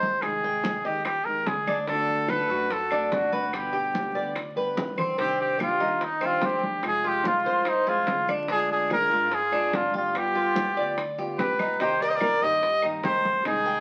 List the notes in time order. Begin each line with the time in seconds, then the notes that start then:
Already playing: C2 D#3 A#3 C4 G4 C5
0.03 high conga
0.22 C3 D#3 G#3 C4 G#4, high bongo, high conga, claves
0.43 G5, high bongo, high conga
0.64 high bongo, high conga
0.84 D#2 D#3 G#3 C4 G4 D#5, high bongo
1.05 G4, muted steel-string acoustic guitar stroke, high bongo, high conga, claves
1.25 D#2 D#3 G#3 C4 G4 A#4, high conga
1.46 D2 G#3 G#4, high bongo, low bongo, high conga
1.67 D4, high bongo, high conga, claves
1.87 D3 A3 D4 F#4 A4, high bongo, high conga
2.09 high conga
2.28 A4 B4, high bongo, high conga, claves
2.49 F#2 A3 D4 F#4, high conga
2.70 A4, muted steel-string acoustic guitar stroke, high bongo, high conga
2.91 A3 D4 F#4, high conga, claves
3.12 G2 D3 D4 F#4, high bongo, low bongo, high conga
3.33 B4, high conga
3.53 B2 D3 G3 B3 G4, high bongo, high conga, claves
3.73 G4, high bongo, high conga
3.95 high bongo, high conga
4.15 D2 D3 G3 B3 G4 D5, high bongo
4.35 muted steel-string acoustic guitar stroke, high bongo, high conga, claves
4.56 D3 G3 B3 G4 B4, high conga
4.77 C2 D3 G3 B3 G4, high bongo, low bongo, high conga
4.98 C4, high bongo, low conga, claves
5.18 C3 D#3 G3 C4 D4 G4, high bongo, high conga
5.40 G4, high conga
5.59 F4 G4, high bongo, high conga, claves
5.80 D#2 D#3 G3 D4 D#4 G4, high conga
6.01 D#4, muted steel-string acoustic guitar stroke, high bongo, high conga
6.21 D#3 G3 C4 D4 G4, high conga, claves
6.25 F4
6.42 F2 D#3 G3 D4 G4, high bongo, low bongo, high conga
6.63 high conga
6.83 C3 F3 G#3 C4 F4, high bongo, high conga, claves
6.87 G#4
7.04 F4 G4, high bongo, high conga
7.24 F4, high bongo, high conga
7.45 C2 F3 G#3 C4 F4 C5, high bongo
7.65 D#4, muted steel-string acoustic guitar stroke, high bongo, high conga, claves
7.87 F3 G#3 C4 F4 G#4, high conga
8.07 D2 F3 G#3 C4, high bongo, low bongo, high conga
8.28 D4, high bongo, high conga, claves
8.48 D3 G#3 D4 F4 G#4, high bongo, high conga
8.70 G#4, high conga
8.90 G#4 A#4, high bongo, high conga, claves
9.10 G#2 G#3 D4 F4, high conga
9.31 G#4, muted steel-string acoustic guitar stroke, high bongo, high conga
9.52 G#3 D4 F4, high conga, claves
9.73 G2 D3 D4 F4, high bongo, low bongo, high conga
9.94 F4 G4, high conga
10.13 G3 B3 F4, high bongo, high conga, claves
10.18 G4
10.35 F4, high bongo, high conga
10.55 high bongo, high conga
10.76 D2 B3 F4 D5, high bongo
10.98 muted steel-string acoustic guitar stroke, high bongo, high conga, claves
11.18 B3 F4 G4, high conga
11.38 C2 G3 B3 F4 G4 B4, high bongo, low bongo, high conga
11.59 D#4, high bongo, high conga, claves
11.80 C3 D#3 A#3 C4 D#4 G4 C5, high bongo, high conga
12.01 A#4 D5, high conga
12.09 C5 D#5
12.15 A#4 D5
12.21 A#4, high bongo, high conga, claves
12.41 G2 D#3 A#3 C4 G4 C5 D#5, high conga
12.63 muted steel-string acoustic guitar stroke, high bongo, high conga
12.82 D#3 A#3 C4 D#4 G4, high conga, claves
13.03 C2 D#3 A#3 C4 G4 C5, high bongo, low bongo, high conga
13.25 high conga
13.45 C3 D#3 G#3 C4 D#4 G#4, high bongo, high conga, claves
13.65 G5, high bongo, high conga